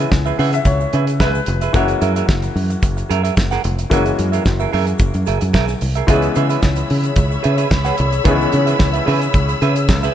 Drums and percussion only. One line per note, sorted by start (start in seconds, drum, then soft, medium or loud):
0.12 kick loud
0.12 snare loud
0.12 shaker medium
0.26 shaker medium
0.39 open hi-hat medium
0.53 closed hi-hat soft
0.53 shaker medium
0.65 kick loud
0.65 closed hi-hat medium
0.65 shaker medium
0.80 shaker soft
0.93 closed hi-hat soft
1.07 closed hi-hat medium
1.07 shaker medium
1.20 kick loud
1.20 snare loud
1.20 shaker medium
1.35 shaker medium
1.46 closed hi-hat medium
1.61 closed hi-hat soft
1.61 shaker medium
1.74 kick loud
1.74 closed hi-hat medium
1.74 shaker medium
1.88 closed hi-hat soft
1.88 shaker soft
2.02 closed hi-hat medium
2.02 shaker medium
2.16 closed hi-hat soft
2.16 shaker medium
2.29 kick loud
2.29 snare medium
2.29 shaker medium
2.42 closed hi-hat soft
2.42 shaker medium
2.57 open hi-hat medium
2.70 closed hi-hat soft
2.70 shaker medium
2.82 kick loud
2.82 closed hi-hat medium
2.82 shaker medium
2.97 closed hi-hat soft
2.97 shaker medium
3.11 closed hi-hat medium
3.25 closed hi-hat medium
3.25 shaker medium
3.37 kick loud
3.37 snare loud
3.37 shaker medium
3.52 snare soft
3.52 closed hi-hat soft
3.52 shaker medium
3.64 closed hi-hat medium
3.79 closed hi-hat soft
3.79 shaker medium
3.91 kick loud
3.91 closed hi-hat medium
3.91 shaker medium
4.06 closed hi-hat soft
4.06 shaker soft
4.19 closed hi-hat medium
4.19 shaker medium
4.33 closed hi-hat soft
4.33 shaker medium
4.45 kick loud
4.45 snare medium
4.45 shaker medium
4.60 shaker medium
4.73 open hi-hat medium
4.87 closed hi-hat soft
4.87 shaker medium
4.98 kick loud
4.98 closed hi-hat medium
4.98 shaker medium
5.14 closed hi-hat soft
5.14 shaker soft
5.26 closed hi-hat medium
5.26 shaker medium
5.41 closed hi-hat soft
5.41 shaker medium
5.54 kick loud
5.54 snare loud
5.54 shaker loud
5.68 snare soft
5.68 shaker medium
5.81 open hi-hat medium
5.81 shaker medium
5.95 closed hi-hat soft
5.95 shaker medium
6.08 kick loud
6.08 closed hi-hat medium
6.08 shaker medium
6.22 closed hi-hat soft
6.22 shaker soft
6.35 closed hi-hat medium
6.35 shaker medium
6.49 closed hi-hat soft
6.49 shaker medium
6.62 kick loud
6.62 snare loud
6.62 shaker medium
6.76 closed hi-hat soft
6.76 shaker medium
6.90 open hi-hat medium
7.03 closed hi-hat soft
7.03 shaker medium
7.16 kick loud
7.16 closed hi-hat medium
7.16 shaker medium
7.31 shaker soft
7.44 closed hi-hat medium
7.58 closed hi-hat soft
7.58 shaker medium
7.71 kick loud
7.71 snare loud
7.71 shaker loud
7.85 snare soft
7.85 closed hi-hat soft
7.85 shaker medium
7.98 closed hi-hat medium
8.12 closed hi-hat soft
8.12 shaker medium
8.25 kick loud
8.25 closed hi-hat medium
8.25 shaker medium
8.41 shaker soft
8.52 closed hi-hat medium
8.52 shaker medium
8.67 closed hi-hat soft
8.67 shaker medium
8.79 kick loud
8.79 snare medium
8.79 shaker medium
8.93 closed hi-hat soft
8.93 shaker medium
9.07 open hi-hat medium
9.22 closed hi-hat soft
9.22 shaker medium
9.34 kick loud
9.34 closed hi-hat medium
9.34 shaker medium
9.49 closed hi-hat soft
9.49 shaker medium
9.62 closed hi-hat soft
9.76 closed hi-hat medium
9.76 shaker medium
9.89 kick loud
9.89 snare loud
9.89 shaker medium
10.03 snare soft
10.03 closed hi-hat soft
10.03 shaker medium